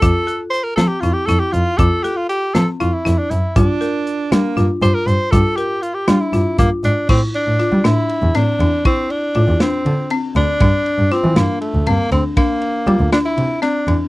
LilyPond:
<<
  \new Staff \with { instrumentName = "Tenor saxophone" } { \time 7/8 \key g \dorian \tempo 4 = 119 a'8. r16 c''16 bes'16 a'16 g'16 f'16 g'16 a'16 g'16 f'8 | a'8 g'16 f'16 g'8 a'16 r16 f'16 e'8 d'16 e'8 | r2 r8 c''16 bes'16 c''8 | a'8 g'8 f'16 g'16 f'16 e'8. bes8 d'8 |
c'8 d'4 e'4 d'4 | c'8 d'4 c'4 r8 d'8~ | d'4 c'8 bes8 a8 bes8 c'8 | bes4. d'16 e'8. d'8. r16 | }
  \new Staff \with { instrumentName = "Marimba" } { \time 7/8 \key g \dorian f'8 a'4 c'8 e'8 e'4 | f'8 a'4 c'8 e'8 e'4 | f'8 bes'4 d'8 f'8 f'4 | f'8 bes'4 d'8 f'8 f'4 |
e'4 f'8 d'4 c'8 d'8 | e'4 f'8 d'4 c'8 d'8 | d'4 f'8 d'4 c'8 d'8 | d'4 f'8 d'4 c'8 d'8 | }
  \new Staff \with { instrumentName = "Alto saxophone" } { \time 7/8 \key g \dorian r2. r8 | r2. r8 | d'4. bes8. r4 r16 | r2. r8 |
r2. r8 | r2. r8 | r2. r8 | r2. r8 | }
  \new Staff \with { instrumentName = "Double bass" } { \clef bass \time 7/8 \key g \dorian f,4. f8 f,8 f,16 r16 f,8 | f,4. f8 f,8 f,16 r16 fis,8 | g,4. g8 g,8 g,16 r16 g,8 | g,4. g8 g,8 g,16 r16 aes,8 |
a,8. a,16 r16 g16 a,8 r16 e,16 a,8 e,8 | r4 a,16 e,8. d4 d,8 | g,8. g,16 r16 e16 g,8 r16 d,16 g,8 d,8 | r4 g16 d,8. c4 e,8 | }
  \new DrumStaff \with { instrumentName = "Drums" } \drummode { \time 7/8 <hh bd>8 hh8 hh8 <hh sn>8 hh8 <hh sn>8 hh8 | <hh bd>8 <hh sn>8 hh8 <hh sn>8 hh8 <hh sn>8 hh8 | <hh bd>8 <hh sn>8 hh8 <hh sn>8 <hh sn>8 hh8 hh8 | <hh bd>8 hh8 hh8 <hh sn>8 <hh sn>8 <hh bd>8 hh8 |
<cymc bd>8 cymr8 <cymr sn>8 <cymr sn>8 cymr8 <cymr sn>8 cymr8 | <bd cymr>8 cymr8 cymr8 <cymr sn>8 cymr8 cymr8 cymr8 | <bd cymr>8 cymr8 <cymr sn>8 <cymr sn>8 cymr8 cymr8 cymr8 | <bd cymr>8 cymr8 cymr8 <cymr sn>8 cymr8 <cymr sn>8 cymr8 | }
>>